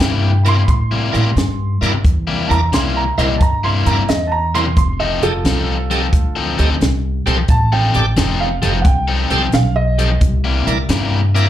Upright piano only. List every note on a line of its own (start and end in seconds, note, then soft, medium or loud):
0.00 0.44 G5 medium
0.43 0.46 B5 medium
0.48 0.68 C6 loud
0.64 0.70 B5 medium
0.69 2.01 C6 medium
2.47 2.53 A5 medium
2.51 2.72 A#5 medium
2.74 2.95 C6 medium
2.97 3.18 A#5 medium
3.18 3.40 D#5 medium
3.37 3.43 A5 medium
3.42 3.63 A#5 medium
3.64 3.86 C6 medium
3.87 4.08 A#5 medium
4.09 4.31 D#5 medium
4.27 4.35 A5 medium
4.32 4.54 A#5 medium
4.55 4.76 C6 medium
4.77 4.99 C6 medium
5.00 5.22 D#5 medium
5.23 6.55 F4 medium
5.23 6.55 A4 loud
7.50 7.71 A5 medium
7.72 8.38 G5 medium
8.40 8.84 F5 medium
8.81 8.87 F#5 medium
8.86 9.51 G5 loud
9.54 9.75 F5 medium
9.76 10.20 D#5 loud